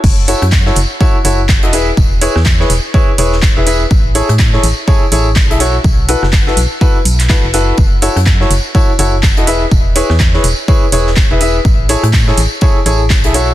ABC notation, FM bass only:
X:1
M:4/4
L:1/16
Q:"Swing 16ths" 1/4=124
K:F#m
V:1 name="FM bass" clef=bass
F,,,2 z F,,2 z F,,, z3 F,,,3 E,,,2 z | E,,,2 z E,,2 z E,,, z3 E,,,2 z E,,,2 z | A,,,2 z A,,2 z A,,, z3 A,,,3 B,,,2 z | B,,,2 z F,,,2 z B,,, z3 B,,,2 z F,,,2 z |
F,,,2 z F,,2 z F,,, z3 F,,,3 E,,,2 z | E,,,2 z E,,2 z E,,, z3 E,,,2 z E,,,2 z | A,,,2 z A,,2 z A,,, z3 A,,,3 B,,,2 z |]